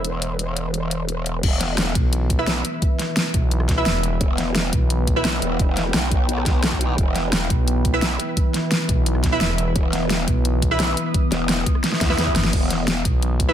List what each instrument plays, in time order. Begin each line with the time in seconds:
Already playing: wobble bass E1, ambient pad E3 B3 A4 D#6, synth stab E4 B4 E5
0.05 closed hi-hat
0.22 closed hi-hat
0.39 closed hi-hat
0.57 closed hi-hat
0.74 closed hi-hat
0.91 closed hi-hat
1.09 closed hi-hat
1.26 closed hi-hat
1.43 wobble bass E1, ambient pad E3 B3 B4 E5, kick, closed hi-hat, crash
1.61 snare, closed hi-hat
1.78 snare, closed hi-hat
1.95 fm bass B1, kick, closed hi-hat
2.13 closed hi-hat
2.30 kick, closed hi-hat
2.39 synth stab E4 B4 E5, cross-stick
2.47 wobble bass B1, snare, closed hi-hat
2.65 closed hi-hat
2.82 kick, closed hi-hat
2.99 snare, closed hi-hat
3.17 snare, closed hi-hat
3.34 fm bass B1, kick, closed hi-hat
3.51 closed hi-hat
3.60 cross-stick
3.69 kick, snare, closed hi-hat
3.77 synth stab E4 B4 E5
3.86 fm bass E1, snare, closed hi-hat
3.95 cross-stick
4.03 closed hi-hat
4.21 wobble bass E1, ambient pad G5, kick, closed hi-hat
4.38 snare, closed hi-hat
4.56 snare, closed hi-hat
4.73 fm bass B1, kick, closed hi-hat
4.90 closed hi-hat
5.07 kick, closed hi-hat
5.16 synth stab E4 B4 E5, cross-stick
5.25 wobble bass B1, snare, closed hi-hat
5.42 wobble bass E1, closed hi-hat
5.59 kick, closed hi-hat
5.77 snare, closed hi-hat
5.94 wobble bass B1, snare, closed hi-hat
6.12 kick, closed hi-hat
6.29 closed hi-hat
6.38 cross-stick
6.46 kick, snare, closed hi-hat
6.63 snare, closed hi-hat
6.72 kick, cross-stick
6.81 closed hi-hat
6.98 wobble bass E1, ambient pad E5, kick, closed hi-hat
7.16 snare, closed hi-hat
7.33 snare, closed hi-hat
7.50 fm bass B1, kick, closed hi-hat
7.68 closed hi-hat
7.85 kick, closed hi-hat
7.94 synth stab E4 B4 E5, cross-stick
8.02 wobble bass B1, snare, closed hi-hat
8.20 closed hi-hat
8.37 kick, closed hi-hat
8.54 snare, closed hi-hat
8.72 snare, closed hi-hat
8.89 fm bass B1, kick, closed hi-hat
9.06 closed hi-hat
9.15 cross-stick
9.24 kick, snare, closed hi-hat
9.32 synth stab E4 B4 E5
9.41 fm bass E1, snare, closed hi-hat
9.50 cross-stick
9.58 closed hi-hat
9.76 wobble bass E1, ambient pad D#6, kick, closed hi-hat
9.93 snare, closed hi-hat
10.10 snare, closed hi-hat
10.28 fm bass B1, kick, closed hi-hat
10.45 closed hi-hat
10.62 kick, closed hi-hat
10.71 synth stab E4 B4 E5, cross-stick
10.80 wobble bass B1, snare, closed hi-hat
10.97 closed hi-hat
11.14 kick, closed hi-hat
11.32 wobble bass E1, snare, closed hi-hat
11.49 snare, closed hi-hat
11.66 kick, closed hi-hat
11.75 cross-stick
11.84 snare, closed hi-hat, swell
11.92 snare
12.01 wobble bass E2, kick, snare, closed hi-hat
12.10 synth stab E4 B4 E5, snare
12.18 snare, closed hi-hat
12.27 kick
12.36 fm bass G1, snare, closed hi-hat
12.44 snare
12.53 wobble bass E1, ambient pad A4 E5, kick, closed hi-hat, crash
12.70 snare, closed hi-hat
12.88 snare, closed hi-hat
13.05 fm bass B1, kick, closed hi-hat
13.22 closed hi-hat
13.40 kick, closed hi-hat
13.48 synth stab E4 B4 E5, cross-stick